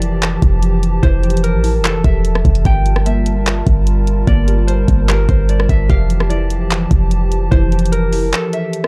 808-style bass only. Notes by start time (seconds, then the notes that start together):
Already playing: F1
0.42 F1
1.03 F1
1.54 A1
1.79 F1
2.04 E1
2.45 F1
2.65 G1
3.67 G1
4.27 G1
4.88 G1
5.29 G1
5.69 G1
5.90 F1
6.91 F1
7.52 F1